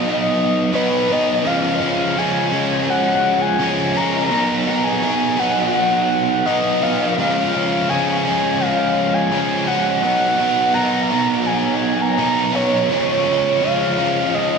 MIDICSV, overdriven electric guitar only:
0, 0, Header, 1, 2, 480
1, 0, Start_track
1, 0, Tempo, 715137
1, 976, Time_signature, 4, 2, 24, 8
1, 9789, End_track
2, 0, Start_track
2, 0, Title_t, "Overdriven electric guitar"
2, 0, Program_c, 0, 29
2, 0, Note_on_c, 0, 54, 56
2, 0, Note_on_c, 0, 59, 65
2, 0, Note_on_c, 0, 63, 69
2, 487, Note_off_c, 0, 54, 0
2, 487, Note_on_c, 0, 47, 80
2, 492, Note_off_c, 0, 59, 0
2, 495, Note_on_c, 0, 54, 79
2, 497, Note_off_c, 0, 63, 0
2, 500, Note_on_c, 0, 59, 85
2, 505, Note_on_c, 0, 63, 77
2, 722, Note_off_c, 0, 63, 0
2, 730, Note_on_c, 0, 63, 75
2, 732, Note_off_c, 0, 59, 0
2, 739, Note_off_c, 0, 54, 0
2, 740, Note_on_c, 0, 59, 63
2, 747, Note_on_c, 0, 54, 60
2, 957, Note_off_c, 0, 47, 0
2, 958, Note_off_c, 0, 63, 0
2, 963, Note_off_c, 0, 59, 0
2, 967, Note_off_c, 0, 54, 0
2, 970, Note_on_c, 0, 49, 84
2, 977, Note_on_c, 0, 53, 105
2, 980, Note_on_c, 0, 56, 100
2, 987, Note_on_c, 0, 61, 95
2, 1200, Note_off_c, 0, 61, 0
2, 1208, Note_off_c, 0, 56, 0
2, 1208, Note_on_c, 0, 61, 85
2, 1216, Note_on_c, 0, 56, 71
2, 1218, Note_off_c, 0, 53, 0
2, 1226, Note_on_c, 0, 53, 66
2, 1444, Note_off_c, 0, 49, 0
2, 1452, Note_off_c, 0, 53, 0
2, 1452, Note_on_c, 0, 49, 75
2, 1457, Note_off_c, 0, 56, 0
2, 1460, Note_on_c, 0, 53, 83
2, 1462, Note_off_c, 0, 61, 0
2, 1465, Note_on_c, 0, 56, 89
2, 1470, Note_on_c, 0, 61, 76
2, 1679, Note_off_c, 0, 61, 0
2, 1687, Note_on_c, 0, 61, 67
2, 1688, Note_off_c, 0, 56, 0
2, 1696, Note_on_c, 0, 56, 62
2, 1697, Note_off_c, 0, 53, 0
2, 1705, Note_on_c, 0, 53, 51
2, 1932, Note_off_c, 0, 49, 0
2, 2408, Note_off_c, 0, 53, 0
2, 2410, Note_on_c, 0, 49, 66
2, 2414, Note_off_c, 0, 56, 0
2, 2416, Note_on_c, 0, 53, 76
2, 2419, Note_off_c, 0, 61, 0
2, 2422, Note_on_c, 0, 56, 78
2, 2427, Note_on_c, 0, 61, 89
2, 2642, Note_off_c, 0, 61, 0
2, 2651, Note_off_c, 0, 56, 0
2, 2651, Note_on_c, 0, 61, 72
2, 2659, Note_on_c, 0, 56, 57
2, 2661, Note_off_c, 0, 53, 0
2, 2669, Note_on_c, 0, 53, 55
2, 2876, Note_off_c, 0, 49, 0
2, 2876, Note_off_c, 0, 61, 0
2, 2881, Note_off_c, 0, 56, 0
2, 2886, Note_off_c, 0, 53, 0
2, 2889, Note_on_c, 0, 47, 101
2, 2896, Note_on_c, 0, 54, 99
2, 2903, Note_on_c, 0, 59, 92
2, 2907, Note_on_c, 0, 63, 98
2, 3121, Note_off_c, 0, 63, 0
2, 3129, Note_on_c, 0, 63, 72
2, 3130, Note_off_c, 0, 59, 0
2, 3137, Note_off_c, 0, 54, 0
2, 3138, Note_on_c, 0, 59, 74
2, 3145, Note_on_c, 0, 54, 61
2, 3362, Note_off_c, 0, 47, 0
2, 3368, Note_off_c, 0, 54, 0
2, 3370, Note_on_c, 0, 47, 81
2, 3375, Note_off_c, 0, 59, 0
2, 3376, Note_on_c, 0, 54, 80
2, 3380, Note_off_c, 0, 63, 0
2, 3383, Note_on_c, 0, 59, 77
2, 3388, Note_on_c, 0, 63, 83
2, 3601, Note_off_c, 0, 63, 0
2, 3609, Note_on_c, 0, 63, 69
2, 3611, Note_off_c, 0, 59, 0
2, 3616, Note_off_c, 0, 54, 0
2, 3619, Note_on_c, 0, 59, 52
2, 3624, Note_on_c, 0, 54, 52
2, 3850, Note_off_c, 0, 47, 0
2, 4333, Note_off_c, 0, 54, 0
2, 4334, Note_on_c, 0, 47, 65
2, 4338, Note_off_c, 0, 59, 0
2, 4341, Note_on_c, 0, 54, 81
2, 4342, Note_off_c, 0, 63, 0
2, 4346, Note_on_c, 0, 59, 80
2, 4350, Note_on_c, 0, 63, 90
2, 4564, Note_off_c, 0, 63, 0
2, 4572, Note_on_c, 0, 63, 62
2, 4573, Note_off_c, 0, 59, 0
2, 4581, Note_on_c, 0, 59, 69
2, 4582, Note_off_c, 0, 54, 0
2, 4590, Note_on_c, 0, 54, 57
2, 4796, Note_off_c, 0, 63, 0
2, 4797, Note_off_c, 0, 47, 0
2, 4801, Note_off_c, 0, 59, 0
2, 4805, Note_off_c, 0, 54, 0
2, 4820, Note_on_c, 0, 49, 84
2, 4826, Note_on_c, 0, 53, 88
2, 4831, Note_on_c, 0, 56, 99
2, 4835, Note_on_c, 0, 61, 92
2, 5052, Note_off_c, 0, 61, 0
2, 5060, Note_off_c, 0, 56, 0
2, 5060, Note_on_c, 0, 61, 83
2, 5069, Note_on_c, 0, 56, 76
2, 5070, Note_off_c, 0, 53, 0
2, 5078, Note_on_c, 0, 53, 59
2, 5289, Note_off_c, 0, 49, 0
2, 5296, Note_off_c, 0, 53, 0
2, 5297, Note_on_c, 0, 49, 80
2, 5302, Note_off_c, 0, 56, 0
2, 5304, Note_off_c, 0, 61, 0
2, 5304, Note_on_c, 0, 53, 75
2, 5310, Note_on_c, 0, 56, 80
2, 5312, Note_on_c, 0, 61, 73
2, 5530, Note_off_c, 0, 61, 0
2, 5538, Note_on_c, 0, 61, 65
2, 5541, Note_off_c, 0, 56, 0
2, 5549, Note_on_c, 0, 56, 62
2, 5550, Note_off_c, 0, 53, 0
2, 5558, Note_on_c, 0, 53, 55
2, 5773, Note_off_c, 0, 49, 0
2, 6249, Note_off_c, 0, 53, 0
2, 6251, Note_on_c, 0, 49, 77
2, 6255, Note_off_c, 0, 56, 0
2, 6258, Note_on_c, 0, 53, 65
2, 6262, Note_off_c, 0, 61, 0
2, 6263, Note_on_c, 0, 56, 69
2, 6270, Note_on_c, 0, 61, 80
2, 6482, Note_off_c, 0, 61, 0
2, 6490, Note_on_c, 0, 61, 76
2, 6491, Note_off_c, 0, 56, 0
2, 6496, Note_off_c, 0, 53, 0
2, 6499, Note_on_c, 0, 56, 62
2, 6504, Note_on_c, 0, 53, 59
2, 6715, Note_off_c, 0, 61, 0
2, 6716, Note_off_c, 0, 49, 0
2, 6720, Note_off_c, 0, 56, 0
2, 6722, Note_off_c, 0, 53, 0
2, 6728, Note_on_c, 0, 47, 90
2, 6735, Note_on_c, 0, 54, 93
2, 6742, Note_on_c, 0, 59, 101
2, 6747, Note_on_c, 0, 63, 96
2, 6960, Note_off_c, 0, 63, 0
2, 6968, Note_on_c, 0, 63, 80
2, 6969, Note_off_c, 0, 59, 0
2, 6977, Note_on_c, 0, 59, 75
2, 6978, Note_off_c, 0, 54, 0
2, 6986, Note_on_c, 0, 54, 73
2, 7201, Note_off_c, 0, 47, 0
2, 7207, Note_off_c, 0, 54, 0
2, 7209, Note_on_c, 0, 47, 70
2, 7214, Note_off_c, 0, 59, 0
2, 7216, Note_on_c, 0, 54, 75
2, 7220, Note_off_c, 0, 63, 0
2, 7222, Note_on_c, 0, 59, 78
2, 7228, Note_on_c, 0, 63, 93
2, 7442, Note_off_c, 0, 63, 0
2, 7450, Note_on_c, 0, 63, 62
2, 7455, Note_off_c, 0, 59, 0
2, 7461, Note_off_c, 0, 54, 0
2, 7463, Note_on_c, 0, 59, 66
2, 7469, Note_on_c, 0, 54, 60
2, 7689, Note_off_c, 0, 47, 0
2, 8171, Note_off_c, 0, 54, 0
2, 8171, Note_on_c, 0, 47, 76
2, 8172, Note_off_c, 0, 59, 0
2, 8179, Note_on_c, 0, 54, 70
2, 8180, Note_off_c, 0, 63, 0
2, 8180, Note_on_c, 0, 59, 79
2, 8188, Note_on_c, 0, 63, 90
2, 8400, Note_off_c, 0, 63, 0
2, 8409, Note_on_c, 0, 63, 72
2, 8411, Note_off_c, 0, 59, 0
2, 8418, Note_off_c, 0, 54, 0
2, 8419, Note_on_c, 0, 59, 74
2, 8426, Note_on_c, 0, 54, 61
2, 8635, Note_off_c, 0, 63, 0
2, 8637, Note_off_c, 0, 47, 0
2, 8641, Note_off_c, 0, 59, 0
2, 8644, Note_off_c, 0, 54, 0
2, 8651, Note_on_c, 0, 49, 96
2, 8656, Note_on_c, 0, 53, 106
2, 8662, Note_on_c, 0, 56, 102
2, 8669, Note_on_c, 0, 61, 104
2, 8883, Note_off_c, 0, 61, 0
2, 8891, Note_off_c, 0, 56, 0
2, 8891, Note_on_c, 0, 61, 78
2, 8899, Note_off_c, 0, 53, 0
2, 8899, Note_on_c, 0, 56, 77
2, 8907, Note_on_c, 0, 53, 60
2, 9126, Note_off_c, 0, 49, 0
2, 9133, Note_off_c, 0, 53, 0
2, 9134, Note_on_c, 0, 49, 69
2, 9140, Note_off_c, 0, 56, 0
2, 9141, Note_on_c, 0, 53, 74
2, 9145, Note_off_c, 0, 61, 0
2, 9148, Note_on_c, 0, 56, 90
2, 9153, Note_on_c, 0, 61, 97
2, 9371, Note_off_c, 0, 61, 0
2, 9379, Note_on_c, 0, 61, 70
2, 9380, Note_off_c, 0, 56, 0
2, 9387, Note_off_c, 0, 53, 0
2, 9388, Note_on_c, 0, 56, 66
2, 9395, Note_on_c, 0, 53, 59
2, 9614, Note_off_c, 0, 49, 0
2, 9789, Note_off_c, 0, 53, 0
2, 9789, Note_off_c, 0, 56, 0
2, 9789, Note_off_c, 0, 61, 0
2, 9789, End_track
0, 0, End_of_file